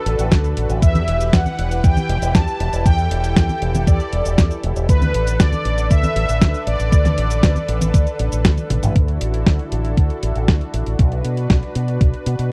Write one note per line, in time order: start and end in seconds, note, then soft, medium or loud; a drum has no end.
0.00 0.78 D3 medium
0.00 0.78 D4 medium
0.00 0.78 F#4 medium
0.00 0.53 A4 medium
0.00 0.78 A4 medium
0.00 0.78 B4 medium
0.06 0.17 A1 loud
0.06 closed hi-hat medium
0.19 0.29 A1 loud
0.19 closed hi-hat soft
0.19 cabasa medium
0.31 0.53 D2 medium
0.31 kick loud
0.31 snare loud
0.31 closed hi-hat medium
0.31 cabasa soft
0.44 closed hi-hat soft
0.44 cabasa soft
0.57 0.68 A1 medium
0.57 closed hi-hat loud
0.70 0.80 A1 medium
0.70 closed hi-hat medium
0.70 cabasa medium
0.82 1.04 E2 loud
0.82 4.85 E3 medium
0.82 4.85 E4 medium
0.82 4.85 G4 medium
0.82 2.84 B4 medium
0.82 1.30 E5 loud
0.82 kick loud
0.82 closed hi-hat medium
0.82 cabasa medium
0.95 closed hi-hat soft
0.95 high conga medium
0.95 cabasa soft
1.08 1.29 E1 medium
1.08 closed hi-hat medium
1.20 closed hi-hat soft
1.20 cabasa medium
1.33 1.44 E2 loud
1.33 1.85 F#5 loud
1.33 kick loud
1.33 snare loud
1.33 closed hi-hat medium
1.33 cabasa soft
1.46 closed hi-hat soft
1.46 high conga medium
1.46 cabasa soft
1.58 1.80 E1 loud
1.58 closed hi-hat medium
1.71 closed hi-hat medium
1.71 cabasa medium
1.84 1.95 E2 medium
1.84 2.36 G5 loud
1.84 kick loud
1.84 closed hi-hat soft
1.84 cabasa soft
1.97 closed hi-hat soft
1.97 high conga medium
1.97 cabasa soft
2.09 2.20 E1 loud
2.09 closed hi-hat medium
2.22 2.33 E1 medium
2.22 closed hi-hat soft
2.22 cabasa medium
2.35 2.45 E2 medium
2.35 2.87 A5 loud
2.35 kick loud
2.35 snare loud
2.35 closed hi-hat medium
2.35 cabasa soft
2.48 closed hi-hat soft
2.48 cabasa soft
2.60 2.71 E1 loud
2.60 closed hi-hat medium
2.73 2.84 E1 medium
2.73 closed hi-hat medium
2.73 cabasa medium
2.86 3.07 E2 loud
2.86 4.87 A4 medium
2.86 3.10 G5 loud
2.86 kick loud
2.86 closed hi-hat medium
2.86 cabasa medium
2.98 closed hi-hat soft
2.98 cabasa soft
3.11 3.32 E1 medium
3.11 3.90 G5 loud
3.11 closed hi-hat medium
3.24 closed hi-hat medium
3.24 cabasa medium
3.36 3.47 E2 loud
3.36 kick loud
3.36 snare loud
3.36 closed hi-hat medium
3.36 cabasa soft
3.49 closed hi-hat soft
3.49 high conga medium
3.49 cabasa soft
3.62 3.83 E1 medium
3.62 closed hi-hat medium
3.75 closed hi-hat medium
3.75 high conga medium
3.75 cabasa medium
3.87 3.98 E2 medium
3.87 4.60 D5 medium
3.87 kick loud
3.87 closed hi-hat medium
3.87 cabasa medium
4.00 closed hi-hat soft
4.00 cabasa soft
4.13 4.23 E1 loud
4.13 closed hi-hat medium
4.25 4.36 E1 medium
4.25 closed hi-hat medium
4.25 cabasa medium
4.38 4.49 E2 medium
4.38 kick loud
4.38 snare loud
4.38 closed hi-hat medium
4.38 cabasa medium
4.51 closed hi-hat soft
4.51 cabasa soft
4.64 4.74 E1 loud
4.64 closed hi-hat medium
4.76 4.87 E1 medium
4.76 closed hi-hat medium
4.76 cabasa medium
4.89 5.10 D2 loud
4.89 8.92 D3 medium
4.89 8.92 D4 medium
4.89 8.92 A4 medium
4.89 8.92 B4 medium
4.89 5.42 B4 loud
4.89 kick loud
4.89 closed hi-hat medium
4.89 cabasa medium
5.02 closed hi-hat soft
5.02 high conga medium
5.02 cabasa soft
5.14 5.36 A1 medium
5.14 closed hi-hat medium
5.27 closed hi-hat medium
5.27 cabasa medium
5.40 5.50 D2 loud
5.40 5.92 D5 loud
5.40 kick loud
5.40 snare loud
5.40 closed hi-hat medium
5.40 cabasa medium
5.53 closed hi-hat soft
5.53 high conga medium
5.53 cabasa soft
5.65 5.87 A1 loud
5.65 closed hi-hat medium
5.78 closed hi-hat medium
5.78 cabasa medium
5.91 6.01 D2 medium
5.91 6.63 E5 loud
5.91 kick loud
5.91 closed hi-hat medium
5.91 cabasa medium
6.03 closed hi-hat soft
6.03 high conga medium
6.03 cabasa soft
6.16 6.27 A1 loud
6.16 closed hi-hat medium
6.29 6.39 A1 medium
6.29 closed hi-hat medium
6.29 cabasa medium
6.41 6.52 D2 medium
6.41 kick loud
6.41 snare loud
6.41 closed hi-hat medium
6.41 cabasa medium
6.54 closed hi-hat soft
6.54 cabasa soft
6.67 6.78 A1 loud
6.67 8.41 D5 loud
6.67 closed hi-hat loud
6.79 6.90 A1 medium
6.79 closed hi-hat medium
6.79 cabasa medium
6.92 7.14 D2 loud
6.92 kick loud
6.92 closed hi-hat medium
6.92 cabasa medium
7.05 snare soft
7.05 closed hi-hat soft
7.05 high conga medium
7.05 cabasa soft
7.18 7.39 A1 medium
7.18 closed hi-hat loud
7.30 closed hi-hat medium
7.30 cabasa medium
7.43 7.54 D2 loud
7.43 kick loud
7.43 snare loud
7.43 closed hi-hat medium
7.43 cabasa medium
7.56 closed hi-hat soft
7.56 high conga medium
7.56 cabasa soft
7.68 7.90 A1 loud
7.68 closed hi-hat loud
7.81 closed hi-hat medium
7.81 high conga medium
7.81 cabasa medium
7.94 8.05 D2 medium
7.94 kick loud
7.94 closed hi-hat medium
7.94 cabasa soft
8.07 closed hi-hat soft
8.07 cabasa soft
8.19 8.30 A1 loud
8.19 closed hi-hat medium
8.32 8.43 A1 medium
8.32 closed hi-hat medium
8.32 cabasa medium
8.45 8.56 D2 medium
8.45 kick loud
8.45 snare loud
8.45 closed hi-hat medium
8.45 cabasa medium
8.58 closed hi-hat soft
8.58 high tom medium
8.58 cabasa soft
8.70 8.81 A1 medium
8.70 closed hi-hat loud
8.70 mid tom medium
8.83 8.94 A1 medium
8.83 closed hi-hat medium
8.83 mid tom medium
8.83 cabasa medium
8.95 9.17 D2 medium
8.95 10.97 D3 medium
8.95 12.52 D4 medium
8.95 10.97 E4 medium
8.95 12.52 F#4 medium
8.95 10.97 A4 medium
8.95 kick loud
8.95 closed hi-hat medium
9.08 closed hi-hat soft
9.21 9.43 A1 medium
9.21 closed hi-hat loud
9.34 closed hi-hat medium
9.46 9.57 D2 loud
9.46 kick loud
9.46 snare loud
9.46 closed hi-hat medium
9.59 closed hi-hat soft
9.72 9.93 A1 medium
9.72 closed hi-hat medium
9.85 closed hi-hat medium
9.97 10.08 D2 medium
9.97 kick loud
9.97 closed hi-hat medium
10.10 closed hi-hat soft
10.23 10.34 A1 loud
10.23 closed hi-hat medium
10.36 10.46 A1 medium
10.36 closed hi-hat medium
10.48 10.59 D2 medium
10.48 kick loud
10.48 snare loud
10.48 closed hi-hat medium
10.61 closed hi-hat soft
10.74 10.84 A1 medium
10.74 closed hi-hat loud
10.86 10.97 A1 medium
10.86 closed hi-hat medium
10.99 11.21 B1 loud
10.99 12.52 B4 medium
10.99 kick loud
10.99 closed hi-hat medium
11.12 closed hi-hat soft
11.25 11.46 B2 medium
11.25 closed hi-hat medium
11.37 closed hi-hat medium
11.50 11.61 B1 loud
11.50 kick loud
11.50 snare loud
11.50 closed hi-hat medium
11.63 closed hi-hat soft
11.75 11.97 B2 loud
11.75 closed hi-hat loud
11.88 closed hi-hat medium
12.01 12.12 B1 medium
12.01 kick loud
12.01 closed hi-hat medium
12.14 closed hi-hat soft
12.26 12.37 B2 loud
12.26 closed hi-hat medium
12.39 12.50 B2 medium
12.39 closed hi-hat medium